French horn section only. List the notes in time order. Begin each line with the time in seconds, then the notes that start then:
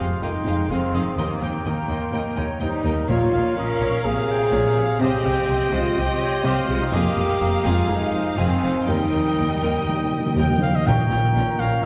0.00 F4
0.21 D#4
0.70 C4
1.19 A#3
1.64 A#3
2.63 D#4
3.09 F4
3.56 A#4
4.04 G#4
5.01 G4
5.74 F4
5.99 G4
6.44 G4
6.68 F4
6.82 D#4
6.96 G4
7.65 F4
7.90 D#4
8.37 C4
8.87 D#4
10.86 C#4 F4